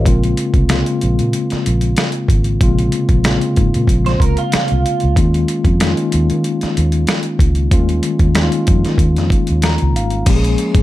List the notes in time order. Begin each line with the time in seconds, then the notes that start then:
Already playing: A#4
0.06 A#1 C#3 G#3 A#3 C4 F4, kick, closed hi-hat
0.23 closed hi-hat
0.37 closed hi-hat
0.54 C2, kick, closed hi-hat
0.69 C#3 G#3 A#3 C4 F4, finger snap, snare, closed hi-hat
0.86 closed hi-hat
1.01 A#1, closed hi-hat
1.19 A#2, closed hi-hat
1.33 closed hi-hat
1.50 muted fingered electric bass stroke, snare, closed hi-hat
1.66 A#1, closed hi-hat
1.81 closed hi-hat
1.97 finger snap, snare, closed hi-hat
2.12 closed hi-hat
2.28 G#1, kick, closed hi-hat
2.44 closed hi-hat
2.61 A#1 C3 G#3 A#3 C4 F4, kick, closed hi-hat
2.68 C#3
2.79 closed hi-hat
2.92 closed hi-hat
3.09 A#1, kick, closed hi-hat
3.24 C#3 G#3 A#3 C4 F4, finger snap, snare, closed hi-hat
3.41 closed hi-hat
3.56 G#2, kick, closed hi-hat
3.74 A#2, closed hi-hat
3.87 A#1, kick, closed hi-hat
4.06 C5, snare, closed hi-hat
4.20 C#2 A#4, kick, closed hi-hat
4.37 F4, closed hi-hat
4.52 finger snap, muted fingered electric bass stroke, snare, closed hi-hat
4.68 C2, closed hi-hat
4.86 closed hi-hat
5.00 C#2, closed hi-hat
5.16 D#2 D#3 G#3 A#3 C#4 F4, kick, closed hi-hat
5.34 closed hi-hat
5.48 closed hi-hat
5.65 F2, kick, closed hi-hat
5.80 D#3 G#3 A#3 C#4 D#4, finger snap, snare, closed hi-hat
5.88 F4
5.97 closed hi-hat
6.12 D#2, closed hi-hat
6.30 D#3, closed hi-hat
6.44 closed hi-hat
6.61 muted fingered electric bass stroke, snare, closed hi-hat
6.77 D#2, closed hi-hat
6.92 closed hi-hat
7.07 finger snap, snare, closed hi-hat
7.23 closed hi-hat
7.39 C#2, kick, closed hi-hat
7.55 closed hi-hat
7.71 D#2 D#3 G3 A#3 C#4 F4, kick, closed hi-hat
7.79 G#3
7.89 closed hi-hat
8.03 closed hi-hat
8.19 D#2, kick, closed hi-hat
8.35 D#3 G#3 A#3 C#4 D#4, finger snap, snare, closed hi-hat
8.43 F4
8.52 closed hi-hat
8.67 F2, kick, closed hi-hat
8.85 D#3, snare, closed hi-hat
8.98 D#2, kick, closed hi-hat
9.16 F2, snare, closed hi-hat
9.30 kick, closed hi-hat
9.47 D#2, closed hi-hat
9.62 A#5, finger snap, snare, closed hi-hat
9.78 closed hi-hat
9.82 C#2
9.96 G#1 F5, closed hi-hat
10.10 closed hi-hat
10.26 A#1 F3 G#3 A#3 C#4 G4, kick, closed hi-hat, crash
10.35 G#4
10.44 closed hi-hat
10.58 closed hi-hat
10.75 G#1, kick, closed hi-hat